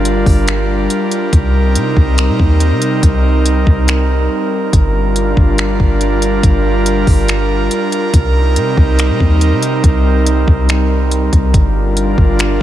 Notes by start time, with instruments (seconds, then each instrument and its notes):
Already playing: 808-style bass G1, analog synth pad G3 D4 F4 A#4
0.05 closed hi-hat
0.26 808-style bass G1, kick, open hi-hat
0.48 finger snap, closed hi-hat
0.90 closed hi-hat
1.11 closed hi-hat
1.33 808-style bass C2, analog synth pad C4 D#4 A#4, kick, closed hi-hat
1.75 808-style bass C3, closed hi-hat
1.97 808-style bass C2, kick
2.18 finger snap, closed hi-hat
2.28 808-style bass C3
2.39 808-style bass D#2, kick
2.60 closed hi-hat
2.71 808-style bass C3
2.82 closed hi-hat
3.03 808-style bass C2, kick, closed hi-hat
3.46 closed hi-hat
3.67 808-style bass C2, kick
3.88 finger snap, closed hi-hat
4.73 808-style bass G1, analog synth pad G3 D4 F4, kick, closed hi-hat
5.16 closed hi-hat
5.37 808-style bass G1, kick
5.58 finger snap, closed hi-hat
5.80 808-style bass G1, kick
6.01 closed hi-hat
6.22 closed hi-hat
6.43 808-style bass G1, kick, closed hi-hat
6.86 closed hi-hat
7.07 808-style bass G1, kick, open hi-hat
7.28 finger snap, closed hi-hat
7.71 closed hi-hat
7.92 closed hi-hat
8.14 808-style bass C2, analog synth pad G3 C4 D#4, kick, closed hi-hat
8.56 808-style bass C3, closed hi-hat
8.77 808-style bass C2, kick
8.99 finger snap, closed hi-hat
9.09 808-style bass C3
9.20 808-style bass D#2, kick
9.41 closed hi-hat
9.52 808-style bass C3
9.62 closed hi-hat
9.84 808-style bass C2, kick, closed hi-hat
10.27 closed hi-hat
10.48 808-style bass C2, kick
10.69 finger snap, closed hi-hat
11.11 closed hi-hat
11.33 808-style bass C2, kick, closed hi-hat
11.54 808-style bass G1, analog synth pad D4 F4 A#4, kick, closed hi-hat
11.97 closed hi-hat
12.18 808-style bass G1, kick
12.39 finger snap, closed hi-hat